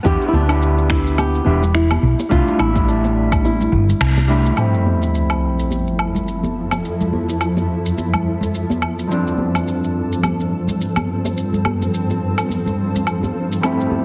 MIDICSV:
0, 0, Header, 1, 8, 480
1, 0, Start_track
1, 0, Tempo, 566038
1, 40, Time_signature, 4, 2, 24, 8
1, 11913, End_track
2, 0, Start_track
2, 0, Title_t, "Nylon-string guitar"
2, 0, Program_c, 0, 24
2, 47, Note_on_c, 0, 67, 108
2, 237, Note_off_c, 0, 67, 0
2, 240, Note_on_c, 0, 64, 72
2, 286, Note_off_c, 0, 64, 0
2, 290, Note_on_c, 0, 62, 101
2, 766, Note_on_c, 0, 64, 93
2, 779, Note_off_c, 0, 62, 0
2, 1000, Note_off_c, 0, 64, 0
2, 1003, Note_on_c, 0, 67, 100
2, 1448, Note_off_c, 0, 67, 0
2, 1480, Note_on_c, 0, 64, 94
2, 1958, Note_off_c, 0, 64, 0
2, 1962, Note_on_c, 0, 65, 95
2, 2196, Note_on_c, 0, 64, 93
2, 2208, Note_off_c, 0, 65, 0
2, 2442, Note_on_c, 0, 62, 85
2, 2445, Note_off_c, 0, 64, 0
2, 2887, Note_off_c, 0, 62, 0
2, 2922, Note_on_c, 0, 64, 74
2, 3607, Note_off_c, 0, 64, 0
2, 11913, End_track
3, 0, Start_track
3, 0, Title_t, "Clean electric guitar"
3, 0, Program_c, 1, 27
3, 26, Note_on_c, 1, 59, 100
3, 34, Note_on_c, 1, 62, 89
3, 40, Note_on_c, 1, 64, 88
3, 48, Note_on_c, 1, 67, 113
3, 377, Note_off_c, 1, 59, 0
3, 381, Note_off_c, 1, 62, 0
3, 384, Note_off_c, 1, 64, 0
3, 388, Note_off_c, 1, 67, 0
3, 391, Note_on_c, 1, 59, 85
3, 408, Note_on_c, 1, 62, 80
3, 423, Note_on_c, 1, 64, 84
3, 437, Note_on_c, 1, 67, 99
3, 1202, Note_off_c, 1, 59, 0
3, 1211, Note_off_c, 1, 62, 0
3, 1218, Note_off_c, 1, 64, 0
3, 1225, Note_off_c, 1, 67, 0
3, 1225, Note_on_c, 1, 59, 87
3, 1233, Note_on_c, 1, 62, 75
3, 1240, Note_on_c, 1, 64, 78
3, 1249, Note_on_c, 1, 67, 92
3, 1367, Note_off_c, 1, 59, 0
3, 1371, Note_off_c, 1, 62, 0
3, 1375, Note_off_c, 1, 64, 0
3, 1379, Note_off_c, 1, 67, 0
3, 1944, Note_on_c, 1, 55, 96
3, 1952, Note_on_c, 1, 57, 91
3, 1958, Note_on_c, 1, 62, 94
3, 1967, Note_on_c, 1, 64, 111
3, 2296, Note_off_c, 1, 55, 0
3, 2300, Note_off_c, 1, 57, 0
3, 2303, Note_off_c, 1, 62, 0
3, 2307, Note_off_c, 1, 64, 0
3, 2313, Note_on_c, 1, 55, 93
3, 2325, Note_on_c, 1, 57, 87
3, 2342, Note_on_c, 1, 62, 82
3, 2358, Note_on_c, 1, 64, 100
3, 3123, Note_off_c, 1, 55, 0
3, 3129, Note_off_c, 1, 57, 0
3, 3138, Note_off_c, 1, 62, 0
3, 3146, Note_off_c, 1, 64, 0
3, 3627, Note_on_c, 1, 55, 91
3, 3633, Note_on_c, 1, 57, 79
3, 3640, Note_on_c, 1, 62, 76
3, 3647, Note_on_c, 1, 64, 91
3, 3848, Note_off_c, 1, 55, 0
3, 3852, Note_off_c, 1, 57, 0
3, 3855, Note_off_c, 1, 62, 0
3, 3855, Note_on_c, 1, 41, 69
3, 3858, Note_off_c, 1, 64, 0
3, 3867, Note_on_c, 1, 55, 57
3, 3877, Note_on_c, 1, 57, 62
3, 3891, Note_on_c, 1, 60, 63
3, 3902, Note_on_c, 1, 64, 73
3, 7683, Note_off_c, 1, 41, 0
3, 7689, Note_off_c, 1, 55, 0
3, 7693, Note_off_c, 1, 57, 0
3, 7695, Note_on_c, 1, 43, 70
3, 7701, Note_off_c, 1, 60, 0
3, 7706, Note_off_c, 1, 64, 0
3, 7707, Note_on_c, 1, 53, 63
3, 7719, Note_on_c, 1, 57, 61
3, 7727, Note_off_c, 1, 57, 0
3, 7730, Note_on_c, 1, 60, 63
3, 7741, Note_on_c, 1, 62, 77
3, 11523, Note_off_c, 1, 43, 0
3, 11529, Note_off_c, 1, 53, 0
3, 11537, Note_on_c, 1, 41, 68
3, 11540, Note_off_c, 1, 60, 0
3, 11546, Note_off_c, 1, 62, 0
3, 11549, Note_on_c, 1, 55, 63
3, 11560, Note_on_c, 1, 57, 62
3, 11571, Note_on_c, 1, 60, 65
3, 11582, Note_on_c, 1, 64, 76
3, 11913, Note_off_c, 1, 41, 0
3, 11913, Note_off_c, 1, 55, 0
3, 11913, Note_off_c, 1, 57, 0
3, 11913, Note_off_c, 1, 60, 0
3, 11913, Note_off_c, 1, 64, 0
3, 11913, End_track
4, 0, Start_track
4, 0, Title_t, "Kalimba"
4, 0, Program_c, 2, 108
4, 11561, Note_on_c, 2, 60, 83
4, 11690, Note_off_c, 2, 60, 0
4, 11800, Note_on_c, 2, 60, 62
4, 11913, Note_off_c, 2, 60, 0
4, 11913, End_track
5, 0, Start_track
5, 0, Title_t, "Ambient pad"
5, 0, Program_c, 3, 92
5, 3876, Note_on_c, 3, 53, 67
5, 3879, Note_on_c, 3, 41, 72
5, 3879, Note_on_c, 3, 64, 69
5, 3880, Note_on_c, 3, 69, 80
5, 7684, Note_off_c, 3, 53, 0
5, 7685, Note_off_c, 3, 64, 0
5, 7686, Note_off_c, 3, 41, 0
5, 7722, Note_on_c, 3, 43, 73
5, 7722, Note_on_c, 3, 60, 66
5, 7724, Note_on_c, 3, 53, 67
5, 11527, Note_off_c, 3, 43, 0
5, 11527, Note_off_c, 3, 60, 0
5, 11561, Note_on_c, 3, 64, 67
5, 11563, Note_on_c, 3, 41, 74
5, 11913, Note_off_c, 3, 41, 0
5, 11913, Note_off_c, 3, 53, 0
5, 11913, Note_off_c, 3, 64, 0
5, 11913, Note_off_c, 3, 69, 0
5, 11913, End_track
6, 0, Start_track
6, 0, Title_t, "Fretless electric bass"
6, 0, Program_c, 4, 35
6, 40, Note_on_c, 4, 40, 96
6, 126, Note_off_c, 4, 40, 0
6, 280, Note_on_c, 4, 38, 80
6, 1179, Note_off_c, 4, 38, 0
6, 1238, Note_on_c, 4, 28, 81
6, 1658, Note_off_c, 4, 28, 0
6, 1718, Note_on_c, 4, 35, 90
6, 1805, Note_off_c, 4, 35, 0
6, 1960, Note_on_c, 4, 36, 100
6, 2046, Note_off_c, 4, 36, 0
6, 2197, Note_on_c, 4, 33, 80
6, 3098, Note_off_c, 4, 33, 0
6, 3155, Note_on_c, 4, 31, 100
6, 3321, Note_off_c, 4, 31, 0
6, 3396, Note_on_c, 4, 36, 85
6, 3817, Note_off_c, 4, 36, 0
6, 11913, End_track
7, 0, Start_track
7, 0, Title_t, "Sub drop"
7, 0, Program_c, 5, 103
7, 3879, Note_on_c, 5, 60, 67
7, 5799, Note_off_c, 5, 60, 0
7, 11913, End_track
8, 0, Start_track
8, 0, Title_t, "Drums"
8, 41, Note_on_c, 9, 36, 112
8, 49, Note_on_c, 9, 82, 53
8, 126, Note_off_c, 9, 36, 0
8, 134, Note_off_c, 9, 82, 0
8, 184, Note_on_c, 9, 82, 33
8, 269, Note_off_c, 9, 82, 0
8, 281, Note_on_c, 9, 63, 80
8, 366, Note_off_c, 9, 63, 0
8, 417, Note_on_c, 9, 77, 72
8, 424, Note_on_c, 9, 62, 45
8, 424, Note_on_c, 9, 82, 60
8, 502, Note_off_c, 9, 77, 0
8, 509, Note_off_c, 9, 62, 0
8, 509, Note_off_c, 9, 82, 0
8, 526, Note_on_c, 9, 82, 52
8, 611, Note_off_c, 9, 82, 0
8, 663, Note_on_c, 9, 82, 31
8, 748, Note_off_c, 9, 82, 0
8, 761, Note_on_c, 9, 26, 72
8, 761, Note_on_c, 9, 36, 92
8, 845, Note_off_c, 9, 36, 0
8, 846, Note_off_c, 9, 26, 0
8, 905, Note_on_c, 9, 82, 62
8, 990, Note_off_c, 9, 82, 0
8, 1003, Note_on_c, 9, 63, 59
8, 1003, Note_on_c, 9, 77, 81
8, 1009, Note_on_c, 9, 82, 52
8, 1087, Note_off_c, 9, 77, 0
8, 1088, Note_off_c, 9, 63, 0
8, 1094, Note_off_c, 9, 82, 0
8, 1144, Note_on_c, 9, 82, 33
8, 1229, Note_off_c, 9, 82, 0
8, 1378, Note_on_c, 9, 64, 72
8, 1384, Note_on_c, 9, 82, 62
8, 1463, Note_off_c, 9, 64, 0
8, 1468, Note_off_c, 9, 82, 0
8, 1481, Note_on_c, 9, 26, 64
8, 1487, Note_on_c, 9, 82, 50
8, 1565, Note_off_c, 9, 26, 0
8, 1572, Note_off_c, 9, 82, 0
8, 1617, Note_on_c, 9, 77, 85
8, 1622, Note_on_c, 9, 63, 75
8, 1624, Note_on_c, 9, 82, 32
8, 1702, Note_off_c, 9, 77, 0
8, 1707, Note_off_c, 9, 63, 0
8, 1708, Note_off_c, 9, 82, 0
8, 1861, Note_on_c, 9, 62, 67
8, 1861, Note_on_c, 9, 82, 61
8, 1945, Note_off_c, 9, 62, 0
8, 1946, Note_off_c, 9, 82, 0
8, 1960, Note_on_c, 9, 36, 114
8, 1964, Note_on_c, 9, 82, 52
8, 2045, Note_off_c, 9, 36, 0
8, 2049, Note_off_c, 9, 82, 0
8, 2101, Note_on_c, 9, 82, 31
8, 2105, Note_on_c, 9, 64, 75
8, 2186, Note_off_c, 9, 82, 0
8, 2189, Note_off_c, 9, 64, 0
8, 2200, Note_on_c, 9, 77, 77
8, 2202, Note_on_c, 9, 63, 80
8, 2285, Note_off_c, 9, 77, 0
8, 2287, Note_off_c, 9, 63, 0
8, 2337, Note_on_c, 9, 36, 102
8, 2340, Note_on_c, 9, 62, 47
8, 2340, Note_on_c, 9, 82, 59
8, 2421, Note_off_c, 9, 36, 0
8, 2424, Note_off_c, 9, 62, 0
8, 2425, Note_off_c, 9, 82, 0
8, 2445, Note_on_c, 9, 82, 55
8, 2530, Note_off_c, 9, 82, 0
8, 2580, Note_on_c, 9, 62, 64
8, 2581, Note_on_c, 9, 82, 31
8, 2664, Note_off_c, 9, 62, 0
8, 2666, Note_off_c, 9, 82, 0
8, 2816, Note_on_c, 9, 36, 100
8, 2817, Note_on_c, 9, 77, 83
8, 2823, Note_on_c, 9, 82, 59
8, 2901, Note_off_c, 9, 36, 0
8, 2902, Note_off_c, 9, 77, 0
8, 2908, Note_off_c, 9, 82, 0
8, 2920, Note_on_c, 9, 63, 69
8, 2925, Note_on_c, 9, 82, 49
8, 3005, Note_off_c, 9, 63, 0
8, 3010, Note_off_c, 9, 82, 0
8, 3058, Note_on_c, 9, 64, 84
8, 3063, Note_on_c, 9, 82, 32
8, 3142, Note_off_c, 9, 64, 0
8, 3148, Note_off_c, 9, 82, 0
8, 3299, Note_on_c, 9, 64, 72
8, 3302, Note_on_c, 9, 82, 64
8, 3384, Note_off_c, 9, 64, 0
8, 3387, Note_off_c, 9, 82, 0
8, 3399, Note_on_c, 9, 26, 72
8, 3399, Note_on_c, 9, 77, 76
8, 3406, Note_on_c, 9, 82, 47
8, 3484, Note_off_c, 9, 26, 0
8, 3484, Note_off_c, 9, 77, 0
8, 3491, Note_off_c, 9, 82, 0
8, 3539, Note_on_c, 9, 63, 74
8, 3541, Note_on_c, 9, 62, 50
8, 3543, Note_on_c, 9, 82, 32
8, 3624, Note_off_c, 9, 63, 0
8, 3626, Note_off_c, 9, 62, 0
8, 3628, Note_off_c, 9, 82, 0
8, 3780, Note_on_c, 9, 82, 63
8, 3865, Note_off_c, 9, 82, 0
8, 3876, Note_on_c, 9, 77, 62
8, 3883, Note_on_c, 9, 82, 48
8, 3961, Note_off_c, 9, 77, 0
8, 3968, Note_off_c, 9, 82, 0
8, 4019, Note_on_c, 9, 82, 29
8, 4104, Note_off_c, 9, 82, 0
8, 4123, Note_on_c, 9, 63, 73
8, 4208, Note_off_c, 9, 63, 0
8, 4254, Note_on_c, 9, 62, 42
8, 4261, Note_on_c, 9, 82, 53
8, 4339, Note_off_c, 9, 62, 0
8, 4345, Note_off_c, 9, 82, 0
8, 4365, Note_on_c, 9, 82, 47
8, 4450, Note_off_c, 9, 82, 0
8, 4493, Note_on_c, 9, 77, 68
8, 4500, Note_on_c, 9, 82, 29
8, 4578, Note_off_c, 9, 77, 0
8, 4585, Note_off_c, 9, 82, 0
8, 4742, Note_on_c, 9, 82, 54
8, 4827, Note_off_c, 9, 82, 0
8, 4838, Note_on_c, 9, 63, 53
8, 4845, Note_on_c, 9, 82, 47
8, 4922, Note_off_c, 9, 63, 0
8, 4930, Note_off_c, 9, 82, 0
8, 4982, Note_on_c, 9, 82, 27
8, 5067, Note_off_c, 9, 82, 0
8, 5080, Note_on_c, 9, 77, 63
8, 5165, Note_off_c, 9, 77, 0
8, 5211, Note_on_c, 9, 64, 69
8, 5222, Note_on_c, 9, 82, 57
8, 5296, Note_off_c, 9, 64, 0
8, 5307, Note_off_c, 9, 82, 0
8, 5324, Note_on_c, 9, 82, 44
8, 5409, Note_off_c, 9, 82, 0
8, 5456, Note_on_c, 9, 63, 75
8, 5461, Note_on_c, 9, 82, 28
8, 5541, Note_off_c, 9, 63, 0
8, 5546, Note_off_c, 9, 82, 0
8, 5693, Note_on_c, 9, 77, 69
8, 5700, Note_on_c, 9, 62, 60
8, 5700, Note_on_c, 9, 82, 58
8, 5778, Note_off_c, 9, 77, 0
8, 5785, Note_off_c, 9, 62, 0
8, 5785, Note_off_c, 9, 82, 0
8, 5807, Note_on_c, 9, 82, 47
8, 5891, Note_off_c, 9, 82, 0
8, 5942, Note_on_c, 9, 64, 72
8, 5942, Note_on_c, 9, 82, 27
8, 6027, Note_off_c, 9, 64, 0
8, 6027, Note_off_c, 9, 82, 0
8, 6047, Note_on_c, 9, 63, 79
8, 6131, Note_off_c, 9, 63, 0
8, 6177, Note_on_c, 9, 62, 45
8, 6183, Note_on_c, 9, 82, 59
8, 6262, Note_off_c, 9, 62, 0
8, 6268, Note_off_c, 9, 82, 0
8, 6282, Note_on_c, 9, 77, 65
8, 6288, Note_on_c, 9, 82, 51
8, 6366, Note_off_c, 9, 77, 0
8, 6373, Note_off_c, 9, 82, 0
8, 6418, Note_on_c, 9, 62, 55
8, 6424, Note_on_c, 9, 82, 28
8, 6503, Note_off_c, 9, 62, 0
8, 6509, Note_off_c, 9, 82, 0
8, 6663, Note_on_c, 9, 82, 57
8, 6748, Note_off_c, 9, 82, 0
8, 6766, Note_on_c, 9, 63, 65
8, 6767, Note_on_c, 9, 82, 47
8, 6851, Note_off_c, 9, 63, 0
8, 6851, Note_off_c, 9, 82, 0
8, 6898, Note_on_c, 9, 64, 69
8, 6899, Note_on_c, 9, 77, 63
8, 6906, Note_on_c, 9, 82, 29
8, 6982, Note_off_c, 9, 64, 0
8, 6984, Note_off_c, 9, 77, 0
8, 6990, Note_off_c, 9, 82, 0
8, 7130, Note_on_c, 9, 64, 70
8, 7146, Note_on_c, 9, 82, 58
8, 7215, Note_off_c, 9, 64, 0
8, 7231, Note_off_c, 9, 82, 0
8, 7247, Note_on_c, 9, 82, 47
8, 7332, Note_off_c, 9, 82, 0
8, 7376, Note_on_c, 9, 62, 44
8, 7379, Note_on_c, 9, 63, 86
8, 7384, Note_on_c, 9, 82, 30
8, 7461, Note_off_c, 9, 62, 0
8, 7464, Note_off_c, 9, 63, 0
8, 7469, Note_off_c, 9, 82, 0
8, 7480, Note_on_c, 9, 77, 64
8, 7565, Note_off_c, 9, 77, 0
8, 7623, Note_on_c, 9, 82, 60
8, 7707, Note_off_c, 9, 82, 0
8, 7727, Note_on_c, 9, 82, 49
8, 7812, Note_off_c, 9, 82, 0
8, 7864, Note_on_c, 9, 82, 29
8, 7948, Note_off_c, 9, 82, 0
8, 7952, Note_on_c, 9, 63, 79
8, 8037, Note_off_c, 9, 63, 0
8, 8097, Note_on_c, 9, 62, 44
8, 8099, Note_on_c, 9, 77, 65
8, 8106, Note_on_c, 9, 82, 59
8, 8182, Note_off_c, 9, 62, 0
8, 8184, Note_off_c, 9, 77, 0
8, 8190, Note_off_c, 9, 82, 0
8, 8206, Note_on_c, 9, 82, 48
8, 8291, Note_off_c, 9, 82, 0
8, 8345, Note_on_c, 9, 82, 30
8, 8430, Note_off_c, 9, 82, 0
8, 8585, Note_on_c, 9, 82, 57
8, 8670, Note_off_c, 9, 82, 0
8, 8678, Note_on_c, 9, 63, 61
8, 8679, Note_on_c, 9, 77, 67
8, 8686, Note_on_c, 9, 82, 49
8, 8763, Note_off_c, 9, 63, 0
8, 8764, Note_off_c, 9, 77, 0
8, 8771, Note_off_c, 9, 82, 0
8, 8821, Note_on_c, 9, 82, 30
8, 8906, Note_off_c, 9, 82, 0
8, 9051, Note_on_c, 9, 64, 61
8, 9061, Note_on_c, 9, 82, 59
8, 9136, Note_off_c, 9, 64, 0
8, 9146, Note_off_c, 9, 82, 0
8, 9167, Note_on_c, 9, 82, 46
8, 9252, Note_off_c, 9, 82, 0
8, 9296, Note_on_c, 9, 77, 66
8, 9300, Note_on_c, 9, 63, 80
8, 9302, Note_on_c, 9, 82, 30
8, 9380, Note_off_c, 9, 77, 0
8, 9385, Note_off_c, 9, 63, 0
8, 9387, Note_off_c, 9, 82, 0
8, 9540, Note_on_c, 9, 62, 61
8, 9543, Note_on_c, 9, 82, 62
8, 9625, Note_off_c, 9, 62, 0
8, 9628, Note_off_c, 9, 82, 0
8, 9645, Note_on_c, 9, 82, 47
8, 9730, Note_off_c, 9, 82, 0
8, 9777, Note_on_c, 9, 64, 61
8, 9784, Note_on_c, 9, 82, 31
8, 9861, Note_off_c, 9, 64, 0
8, 9869, Note_off_c, 9, 82, 0
8, 9879, Note_on_c, 9, 77, 60
8, 9883, Note_on_c, 9, 63, 79
8, 9964, Note_off_c, 9, 77, 0
8, 9968, Note_off_c, 9, 63, 0
8, 10023, Note_on_c, 9, 82, 56
8, 10024, Note_on_c, 9, 62, 44
8, 10107, Note_off_c, 9, 82, 0
8, 10109, Note_off_c, 9, 62, 0
8, 10125, Note_on_c, 9, 82, 51
8, 10210, Note_off_c, 9, 82, 0
8, 10261, Note_on_c, 9, 62, 50
8, 10264, Note_on_c, 9, 82, 29
8, 10346, Note_off_c, 9, 62, 0
8, 10349, Note_off_c, 9, 82, 0
8, 10498, Note_on_c, 9, 77, 69
8, 10504, Note_on_c, 9, 82, 59
8, 10582, Note_off_c, 9, 77, 0
8, 10589, Note_off_c, 9, 82, 0
8, 10594, Note_on_c, 9, 63, 55
8, 10609, Note_on_c, 9, 82, 49
8, 10679, Note_off_c, 9, 63, 0
8, 10693, Note_off_c, 9, 82, 0
8, 10738, Note_on_c, 9, 64, 66
8, 10745, Note_on_c, 9, 82, 31
8, 10822, Note_off_c, 9, 64, 0
8, 10830, Note_off_c, 9, 82, 0
8, 10979, Note_on_c, 9, 64, 65
8, 10986, Note_on_c, 9, 82, 60
8, 11064, Note_off_c, 9, 64, 0
8, 11071, Note_off_c, 9, 82, 0
8, 11082, Note_on_c, 9, 77, 61
8, 11089, Note_on_c, 9, 82, 45
8, 11167, Note_off_c, 9, 77, 0
8, 11174, Note_off_c, 9, 82, 0
8, 11218, Note_on_c, 9, 62, 36
8, 11219, Note_on_c, 9, 63, 75
8, 11226, Note_on_c, 9, 82, 30
8, 11303, Note_off_c, 9, 62, 0
8, 11304, Note_off_c, 9, 63, 0
8, 11311, Note_off_c, 9, 82, 0
8, 11465, Note_on_c, 9, 82, 59
8, 11550, Note_off_c, 9, 82, 0
8, 11562, Note_on_c, 9, 77, 73
8, 11568, Note_on_c, 9, 82, 48
8, 11646, Note_off_c, 9, 77, 0
8, 11653, Note_off_c, 9, 82, 0
8, 11706, Note_on_c, 9, 82, 29
8, 11791, Note_off_c, 9, 82, 0
8, 11797, Note_on_c, 9, 63, 75
8, 11882, Note_off_c, 9, 63, 0
8, 11913, End_track
0, 0, End_of_file